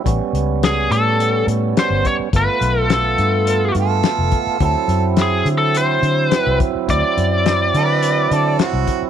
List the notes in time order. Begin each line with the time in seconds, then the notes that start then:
0.04 A1 G3 B3 C#4, kick, closed hi-hat
0.33 C#2, closed hi-hat
0.63 G#4, snare, closed hi-hat
0.91 A2 A4, closed hi-hat
1.20 closed hi-hat
1.47 A2, closed hi-hat
1.77 C5, snare, closed hi-hat
1.90 G1
2.05 C#5, kick, closed hi-hat
2.19 muted fingered electric bass stroke
2.33 G1 A3 B3 F4 B4, kick, closed hi-hat
2.61 B1, closed hi-hat
2.81 A4
2.90 A4, snare, closed hi-hat
3.18 G2, closed hi-hat
3.47 closed hi-hat
3.75 G2, closed hi-hat
3.79 A4
4.03 snare, closed hi-hat
4.18 F1
4.32 kick, closed hi-hat
4.47 muted fingered electric bass stroke
4.60 D2 F#3 C4 E4 A4, kick, closed hi-hat
4.88 F#2, closed hi-hat
5.17 snare, closed hi-hat
5.22 G#4
5.45 D3, closed hi-hat
5.58 A4
5.75 C5, closed hi-hat
6.02 D3, closed hi-hat
6.31 B4, snare, closed hi-hat
6.47 C2
6.60 kick, closed hi-hat
6.75 muted fingered electric bass stroke
6.88 D2 D5, kick, closed hi-hat
7.17 F#2, closed hi-hat
7.46 snare, closed hi-hat
7.74 D3 B4, closed hi-hat
8.03 closed hi-hat
8.31 D3 A4, closed hi-hat
8.59 F#4, snare, closed hi-hat
8.73 C2
8.87 kick, closed hi-hat
9.02 muted fingered electric bass stroke